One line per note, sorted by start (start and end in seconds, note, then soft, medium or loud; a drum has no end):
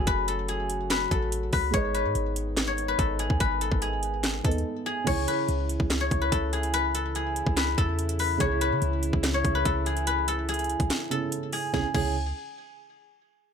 0.00 1.70 C#3 medium
0.00 1.68 F#3 medium
0.00 1.70 F#3 medium
0.00 1.70 A3 medium
0.00 1.22 E4 medium
0.00 0.84 F#4 loud
0.00 1.69 F#4 medium
0.00 1.70 F#4 medium
0.00 0.34 G#4 medium
0.00 1.25 C#5 medium
0.00 1.71 C#5 medium
0.07 1.07 F#1 loud
0.07 0.90 B4 loud
0.07 kick loud
0.07 closed hi-hat medium
0.28 0.55 A4 medium
0.28 closed hi-hat medium
0.48 1.17 G#4 medium
0.48 closed hi-hat medium
0.70 closed hi-hat medium
0.90 1.52 B4 medium
0.90 snare loud
0.90 clap medium
0.90 closed hi-hat medium
1.11 1.51 A1 loud
1.11 2.98 A4 medium
1.11 kick medium
1.11 closed hi-hat medium
1.32 closed hi-hat medium
1.53 1.73 C#2 loud
1.53 1.94 B4 medium
1.53 kick loud
1.53 open hi-hat medium
1.71 2.06 G#1 loud
1.71 4.90 G#2 medium
1.71 4.90 D#3 medium
1.71 4.39 G#3 medium
1.71 4.90 B3 medium
1.71 4.90 D#4 medium
1.71 4.40 G#4 medium
1.71 4.41 B4 medium
1.71 2.67 C#5 medium
1.71 kick loud
1.71 closed hi-hat medium
1.76 4.42 D#5 medium
1.94 2.88 B4 medium
1.94 closed hi-hat medium
2.05 2.15 G#2 loud
2.15 2.95 G#1 loud
2.15 closed hi-hat medium
2.36 closed hi-hat medium
2.57 snare loud
2.57 clap loud
2.57 closed hi-hat medium
2.67 4.59 C#5 medium
2.78 closed hi-hat medium
2.88 3.40 B4 medium
2.99 3.29 G#1 loud
2.99 3.25 A4 medium
2.99 kick loud
2.99 closed hi-hat medium
3.19 3.67 G#4 medium
3.19 closed hi-hat medium
3.30 3.40 D#2 loud
3.30 kick loud
3.40 3.70 G#1 loud
3.40 5.27 B4 loud
3.40 kick loud
3.40 closed hi-hat medium
3.61 3.88 A4 medium
3.61 closed hi-hat medium
3.72 4.42 G#1 loud
3.72 kick loud
3.82 4.51 G#4 medium
3.82 closed hi-hat medium
4.03 closed hi-hat medium
4.24 snare loud
4.24 clap medium
4.24 closed hi-hat medium
4.43 4.65 D#2 loud
4.43 5.06 B3 soft
4.43 5.07 D#4 soft
4.43 4.92 A4 medium
4.43 5.07 B4 soft
4.43 5.08 D#5 medium
4.43 kick medium
4.43 closed hi-hat medium
4.51 closed hi-hat soft
4.58 closed hi-hat soft
4.86 6.38 G#4 medium
5.04 5.27 C#2 loud
5.04 8.35 C#3 medium
5.04 11.57 C#3 medium
5.04 11.57 E3 medium
5.04 8.36 C#4 medium
5.04 11.57 E4 medium
5.04 8.37 E4 medium
5.04 6.00 C#5 medium
5.04 kick loud
5.04 closed hi-hat medium
5.04 crash medium
5.28 6.21 B4 medium
5.28 closed hi-hat medium
5.48 5.79 C#2 loud
5.48 closed hi-hat medium
5.69 closed hi-hat medium
5.80 6.10 C#2 loud
5.80 kick medium
5.90 snare loud
5.90 clap medium
5.90 closed hi-hat medium
6.01 7.92 C#5 medium
6.11 6.31 C#2 loud
6.11 kick medium
6.11 closed hi-hat medium
6.22 6.73 B4 medium
6.32 7.43 C#2 loud
6.32 6.59 A4 medium
6.32 kick loud
6.32 closed hi-hat medium
6.53 7.01 G#4 medium
6.53 closed hi-hat medium
6.63 closed hi-hat medium
6.74 7.56 B4 loud
6.74 closed hi-hat medium
6.95 7.21 A4 medium
6.95 closed hi-hat medium
7.15 7.84 G#4 medium
7.15 closed hi-hat medium
7.36 closed hi-hat medium
7.46 7.77 C#2 loud
7.46 kick loud
7.57 8.19 B4 medium
7.57 snare loud
7.57 clap medium
7.57 closed hi-hat medium
7.78 8.38 E2 loud
7.78 9.65 A4 medium
7.78 kick medium
7.78 closed hi-hat medium
7.99 closed hi-hat medium
8.09 closed hi-hat medium
8.19 8.61 B4 medium
8.19 open hi-hat medium
8.37 8.73 C#2 loud
8.37 11.06 C#3 medium
8.37 11.07 C#4 medium
8.37 11.08 E4 medium
8.37 9.34 C#5 loud
8.37 kick loud
8.37 closed hi-hat medium
8.43 11.08 G#4 medium
8.61 9.55 B4 medium
8.61 closed hi-hat medium
8.72 8.81 C#3 loud
8.82 9.12 C#2 loud
8.82 closed hi-hat medium
9.03 closed hi-hat medium
9.13 9.43 C#2 loud
9.13 kick medium
9.24 snare loud
9.24 clap medium
9.24 closed hi-hat medium
9.34 11.25 C#5 medium
9.45 9.65 C#2 loud
9.45 kick medium
9.45 closed hi-hat medium
9.55 10.07 B4 medium
9.65 10.76 C#2 loud
9.65 9.92 A4 medium
9.65 kick loud
9.65 closed hi-hat medium
9.86 10.34 G#4 medium
9.86 closed hi-hat medium
9.97 closed hi-hat medium
10.07 10.26 B4 medium
10.07 closed hi-hat medium
10.28 10.47 A4 medium
10.28 closed hi-hat medium
10.49 11.07 G#4 medium
10.49 closed hi-hat medium
10.54 closed hi-hat medium
10.59 closed hi-hat soft
10.64 closed hi-hat soft
10.70 closed hi-hat medium
10.80 10.90 C#2 loud
10.80 kick loud
10.80 closed hi-hat medium
10.90 snare loud
10.90 clap loud
10.90 closed hi-hat medium
11.10 11.72 C#3 medium
11.10 11.72 C#4 soft
11.10 11.72 E4 soft
11.10 11.50 A4 medium
11.10 closed hi-hat medium
11.32 closed hi-hat medium
11.53 11.72 G#4 medium
11.53 open hi-hat medium
11.74 11.85 C#2 loud
11.74 11.93 C#3 medium
11.74 11.85 C#3 medium
11.74 11.93 E3 medium
11.74 11.93 G#3 medium
11.74 11.85 C#4 medium
11.74 11.93 E4 medium
11.74 11.85 E4 medium
11.74 11.85 G#4 medium
11.74 kick loud
11.74 snare medium
11.94 12.33 C#2 loud
11.94 12.14 C#3 medium
11.94 12.14 C#4 medium
11.94 12.14 E4 medium
11.94 12.14 G#4 medium
11.94 kick loud
11.94 crash medium